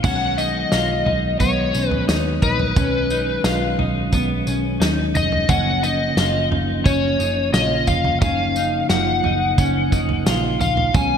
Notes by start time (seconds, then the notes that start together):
0.04 B1 D#3 F#3 G#3 B3 C#4 F#5, kick, floor tom, crash, tambourine
0.38 D#4 D#5, tambourine
0.72 B1 F4, snare, tambourine
1.06 B1 D#4, floor tom
1.39 B1 B3 C#5, kick, floor tom, tambourine
1.73 B1 C#4, tambourine
1.88 B4, floor tom
2.08 D#2 D#4, snare, tambourine
2.42 A#1 D#4 B4, kick, floor tom, tambourine
2.59 floor tom
2.76 B1 C#4, kick, floor tom, tambourine
3.10 D#4, tambourine
3.44 B1 F4, snare, tambourine
3.78 B1 D#4, floor tom
4.12 B1 B3, kick, floor tom, tambourine
4.47 B1 C#4, tambourine
4.80 D#2 D#4, snare, tambourine
5.14 F1 D#4 D#5, floor tom, tambourine
5.32 floor tom
5.48 F#1 C#3 F3 A#3 C#4 F#5, kick, floor tom, tambourine
5.83 D#4 D#5, tambourine
6.17 F#1 F4, snare, tambourine
6.51 F#1 D#4, floor tom
6.84 F#1 C#4 C#5, kick, floor tom, tambourine
7.19 F#1 D#4, tambourine
7.53 A#1 F4 D#5, snare, tambourine
7.87 F1 F4 F5, kick, floor tom, tambourine
8.04 floor tom
8.21 F#1 C#4 D#4 F5, kick, floor tom, tambourine
8.56 D#4, tambourine
8.89 F#1 F3 F#5, snare, tambourine
9.24 F#1 D#4, floor tom
9.58 F#1 C#4, kick, floor tom, tambourine
9.92 F#1 D#4, kick, tambourine
10.09 floor tom
10.26 A#1 F4, snare, tambourine
10.60 A#1 F4 F5, floor tom, tambourine
10.77 floor tom
10.94 B1 D#3 F#3 G#3 B3 C#4 G#5, kick, floor tom, tambourine